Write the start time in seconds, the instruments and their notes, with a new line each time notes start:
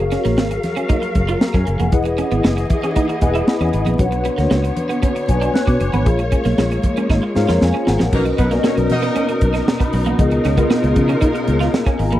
Already playing: fingered electric bass F#1, string section F#3 A#4 F5, tine electric piano F#4 G#4 A#4 C#5 F5
0.12 clean electric guitar C#4, snare, closed hi-hat
0.25 fingered electric bass A#1, clean electric guitar A#3, snare, closed hi-hat
0.38 fingered electric bass G#1, clean electric guitar A#3, snare, muted conga, high conga
0.51 muted clean electric guitar stroke, closed hi-hat, muted conga
0.64 snare, closed hi-hat, low conga
0.77 clean electric guitar C#4, closed hi-hat
0.89 clean electric guitar D#4, kick, closed hi-hat, high conga
1.02 muted clean electric guitar stroke, closed hi-hat
1.15 fingered electric bass F#1, kick, closed hi-hat, high conga
1.29 clean electric guitar F4, closed hi-hat
1.41 tine electric piano A#5, snare, high conga
1.54 fingered electric bass F#2, clean electric guitar C#4, tine electric piano G#5, kick, closed hi-hat
1.67 fingered electric bass F#1, muted clean electric guitar stroke, closed hi-hat
1.79 fingered electric bass F1, clean electric guitar A#3, tine electric piano F#5, closed hi-hat, low conga
1.92 fingered electric bass E1, string section E3 G#4 D#5, tine electric piano E4 G#4 B4 D#5 F#5, kick, closed hi-hat, muted conga, low conga
2.05 muted clean electric guitar stroke, closed hi-hat
2.18 clean electric guitar C#4, closed hi-hat
2.32 fingered electric bass G#1, clean electric guitar B3, closed hi-hat
2.44 fingered electric bass F#1, clean electric guitar B3, snare, muted conga, high conga
2.57 muted clean electric guitar stroke, closed hi-hat
2.70 tine electric piano E5, kick, closed hi-hat, low conga
2.83 clean electric guitar C#4, closed hi-hat
2.96 clean electric guitar D#4, tine electric piano F#5, kick, closed hi-hat, muted conga, high conga
3.09 muted clean electric guitar stroke, closed hi-hat
3.21 fingered electric bass E1, tine electric piano E4 G#4 B4 D#5 F#5 G#5, kick, closed hi-hat, high conga
3.35 clean electric guitar E4, closed hi-hat
3.47 tine electric piano B5, snare, high conga
3.60 fingered electric bass E2, clean electric guitar C#4, closed hi-hat, muted conga
3.73 fingered electric bass G#1, muted clean electric guitar stroke, closed hi-hat
3.85 fingered electric bass A#1, clean electric guitar B3, closed hi-hat, low conga
3.98 fingered electric bass B1, string section D3 B3 C#5, tine electric piano C#4 F#4 B4 C#5 F#5, kick, closed hi-hat, muted conga, low conga
4.05 tine electric piano D4
4.12 muted clean electric guitar stroke, closed hi-hat
4.25 clean electric guitar B3, closed hi-hat
4.38 fingered electric bass D2, clean electric guitar A#3, snare, closed hi-hat
4.51 fingered electric bass C#2, clean electric guitar A#3, snare, high conga
4.64 muted clean electric guitar stroke, closed hi-hat
4.77 closed hi-hat, low conga
4.89 clean electric guitar B3, closed hi-hat
5.02 clean electric guitar C#4, kick, closed hi-hat, muted conga, high conga
5.15 muted clean electric guitar stroke, closed hi-hat, muted conga
5.28 fingered electric bass B1, tine electric piano D4 F#4 B4 C#5 G#5, kick, closed hi-hat, high conga
5.41 clean electric guitar D4, closed hi-hat
5.54 tine electric piano F#6, snare, muted conga, high conga
5.67 fingered electric bass B2, clean electric guitar C#4, tine electric piano D6, kick, closed hi-hat, muted conga
5.81 fingered electric bass F#1, muted clean electric guitar stroke, closed hi-hat
5.93 fingered electric bass G#1, clean electric guitar B3, tine electric piano B5, closed hi-hat, low conga
6.05 fingered electric bass A#1, string section G#3 A#3, tine electric piano F4 G#4 A#4 C#5 F5, kick, closed hi-hat, muted conga, low conga
6.19 muted clean electric guitar stroke, closed hi-hat
6.32 clean electric guitar C#4, kick, closed hi-hat
6.45 fingered electric bass B1, clean electric guitar A#3, snare, closed hi-hat
6.58 fingered electric bass A#1, clean electric guitar A#3, snare, high conga
6.71 muted clean electric guitar stroke, closed hi-hat, muted conga
6.83 kick, closed hi-hat, low conga
6.97 clean electric guitar C#4, closed hi-hat
7.10 fingered electric bass G#1, clean electric guitar D#4, kick, snare, muted conga, high conga
7.23 muted clean electric guitar stroke
7.35 fingered electric bass G#2, tine electric piano F4 G#4 A#4 C5 F5 A#5, snare, high conga
7.42 tine electric piano C#5
7.48 fingered electric bass F2, clean electric guitar F4, snare
7.61 fingered electric bass F2, tine electric piano G#5, snare, high conga
7.74 clean electric guitar C#4, muted conga
7.87 fingered electric bass G#1, tine electric piano F#5, muted clean electric guitar stroke, snare
7.99 fingered electric bass A#1, clean electric guitar A#3, snare, low conga
8.12 fingered electric bass B1, string section B2 D#4 A#4, horn section F#3 A#3 D#4 A#4, tine electric piano C#4 F#4 A#4 B4 D#5, kick, crash, low conga
8.25 muted clean electric guitar stroke, closed hi-hat, muted conga
8.38 fingered electric bass B1, horn section F#3 B3 D#4 B4, clean electric guitar B3, kick, closed hi-hat
8.51 clean electric guitar A#3, tine electric piano B3 C#4 F#4 A#4 D5, snare, closed hi-hat
8.59 tine electric piano D#5
8.64 clean electric guitar A#3, horn section A#3 C#4 F#4 C#5, snare, high conga
8.77 fingered electric bass B1, muted clean electric guitar stroke, closed hi-hat, muted conga
8.90 fingered electric bass B2, horn section A#3 D#4 F#4 D#5, snare, closed hi-hat, low conga
9.02 clean electric guitar B3, closed hi-hat
9.16 clean electric guitar C#4, closed hi-hat, muted conga, high conga
9.29 muted clean electric guitar stroke, closed hi-hat
9.41 fingered electric bass B1, kick, closed hi-hat, high conga
9.54 clean electric guitar D#4, snare, closed hi-hat
9.68 tine electric piano A#5, snare, high conga
9.80 clean electric guitar B3, tine electric piano B5, kick, closed hi-hat, muted conga
9.93 fingered electric bass B1, tine electric piano A#5, muted clean electric guitar stroke, open hi-hat
10.06 clean electric guitar A#3, tine electric piano F#5, closed hi-hat, low conga
10.18 fingered electric bass C#2, string section C#3 F4 A#4, tine electric piano B3 F4 G#4 A#4 D#5, kick, closed hi-hat, low conga
10.31 muted clean electric guitar stroke, closed hi-hat
10.45 fingered electric bass C#2, clean electric guitar C#4, snare, closed hi-hat
10.57 tine electric piano B3 F4 G#4 A#4 D#5, clean electric guitar B3, kick, closed hi-hat
10.70 clean electric guitar B3, snare, high conga
10.83 fingered electric bass C#2, muted clean electric guitar stroke, closed hi-hat
10.96 fingered electric bass C#3, kick, closed hi-hat, low conga
11.09 clean electric guitar C#4, closed hi-hat
11.21 clean electric guitar D#4, kick, closed hi-hat, muted conga, high conga
11.35 muted clean electric guitar stroke, closed hi-hat, muted conga
11.47 fingered electric bass C#2, closed hi-hat, high conga
11.60 clean electric guitar F4, snare, closed hi-hat
11.74 tine electric piano F5, snare, muted conga, high conga
11.86 clean electric guitar C#4, tine electric piano G#5, kick, closed hi-hat
11.99 fingered electric bass G#1, tine electric piano A#5, muted clean electric guitar stroke, open hi-hat
12.12 clean electric guitar A#3, tine electric piano B5, closed hi-hat, low conga